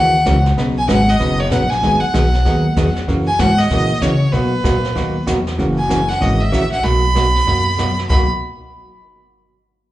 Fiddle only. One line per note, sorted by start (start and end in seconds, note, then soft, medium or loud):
0.00 0.41 F#5 loud
0.78 0.88 G#5 medium
0.89 1.11 F#5 loud
1.10 1.42 D#5 loud
1.40 1.51 C#5 medium
1.52 1.72 F#5 medium
1.70 2.02 G#5 loud
2.01 2.95 F#5 medium
3.28 3.42 G#5 loud
3.40 3.60 F#5 loud
3.59 4.04 D#5 loud
4.02 4.34 C#5 medium
4.33 5.27 B4 medium
5.78 6.10 G#5 medium
6.09 6.24 F#5 medium
6.22 6.42 D#5 medium
6.41 6.72 E5 loud
6.72 6.86 F#5 medium
6.84 7.98 B5 loud
8.09 8.28 B5 medium